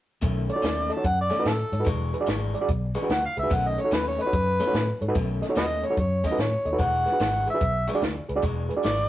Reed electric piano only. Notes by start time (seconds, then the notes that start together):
0.49 A4 C#5
0.55 D#4 F#4 A4 C#5
0.90 A4 D#5
0.97 D#4 F#4 A4 C#5
1.31 A4 C#5
1.39 D#4 F#4 A4 B4
1.73 A4 C#5
1.80 D#4 F#4 A4 B4
2.14 G#4 B4
2.20 D4 F#4 G#4 D5
2.54 G#4 D5
2.61 D4 F#4 G#4 D5
2.95 G#4 B4
3.02 D4 F#4 G#4 B4
3.37 G#4 B4
3.43 D4 F#4 G#4 B4
3.78 A4 C#5
3.84 D#4 F#4 A4 C#5
4.19 A4 D#5
4.26 D#4 F#4 A4 C#5
4.60 A4 C#5
4.67 D#4 F#4 A4 C#5
5.01 A4 C#5
5.08 D#4 F#4 A4 B4
5.42 A4 D#5
5.49 D#4 F#4 A4 C#5
5.82 A4 C#5
5.90 D#4 F#4 A4 C#5
6.24 A4 C#5
6.31 D#4 F#4 A4 B4
6.65 A4 D#5
6.73 D#4 F#4 A4 B4
7.06 G#4 B4
7.12 D4 F#4 G#4 B4
7.47 G#4 B4
7.54 D4 F#4 G#4 B4
7.89 G#4 B4
7.94 D4 F#4 G#4 D5
8.29 G#4 B4
8.36 D4 F#4 G#4 D5
8.69 G#4 B4
8.76 D4 F#4 G#4 D5